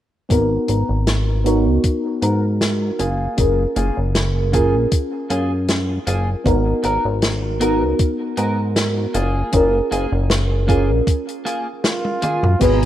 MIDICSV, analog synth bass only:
0, 0, Header, 1, 2, 480
1, 0, Start_track
1, 0, Key_signature, 6, "major"
1, 0, Tempo, 769231
1, 189, Time_signature, 4, 2, 24, 8
1, 8020, End_track
2, 0, Start_track
2, 0, Title_t, "Analog synth bass"
2, 0, Program_c, 0, 38
2, 187, Note_on_c, 0, 32, 91
2, 365, Note_off_c, 0, 32, 0
2, 428, Note_on_c, 0, 32, 86
2, 521, Note_off_c, 0, 32, 0
2, 557, Note_on_c, 0, 32, 88
2, 1037, Note_on_c, 0, 37, 91
2, 1046, Note_off_c, 0, 32, 0
2, 1117, Note_off_c, 0, 37, 0
2, 1388, Note_on_c, 0, 44, 84
2, 1818, Note_off_c, 0, 44, 0
2, 1869, Note_on_c, 0, 30, 88
2, 2045, Note_off_c, 0, 30, 0
2, 2108, Note_on_c, 0, 30, 91
2, 2285, Note_off_c, 0, 30, 0
2, 2349, Note_on_c, 0, 30, 87
2, 2441, Note_off_c, 0, 30, 0
2, 2478, Note_on_c, 0, 30, 91
2, 2958, Note_on_c, 0, 34, 90
2, 2967, Note_off_c, 0, 30, 0
2, 3037, Note_off_c, 0, 34, 0
2, 3310, Note_on_c, 0, 42, 85
2, 3739, Note_off_c, 0, 42, 0
2, 3789, Note_on_c, 0, 30, 86
2, 3965, Note_off_c, 0, 30, 0
2, 4030, Note_on_c, 0, 32, 96
2, 4206, Note_off_c, 0, 32, 0
2, 4268, Note_on_c, 0, 32, 87
2, 4361, Note_off_c, 0, 32, 0
2, 4398, Note_on_c, 0, 32, 88
2, 4877, Note_on_c, 0, 37, 93
2, 4886, Note_off_c, 0, 32, 0
2, 4957, Note_off_c, 0, 37, 0
2, 5228, Note_on_c, 0, 44, 84
2, 5658, Note_off_c, 0, 44, 0
2, 5708, Note_on_c, 0, 30, 85
2, 5885, Note_off_c, 0, 30, 0
2, 5948, Note_on_c, 0, 30, 95
2, 6125, Note_off_c, 0, 30, 0
2, 6188, Note_on_c, 0, 30, 86
2, 6281, Note_off_c, 0, 30, 0
2, 6317, Note_on_c, 0, 30, 89
2, 6796, Note_on_c, 0, 34, 94
2, 6806, Note_off_c, 0, 30, 0
2, 6877, Note_off_c, 0, 34, 0
2, 7757, Note_on_c, 0, 42, 97
2, 7837, Note_off_c, 0, 42, 0
2, 7868, Note_on_c, 0, 32, 96
2, 8020, Note_off_c, 0, 32, 0
2, 8020, End_track
0, 0, End_of_file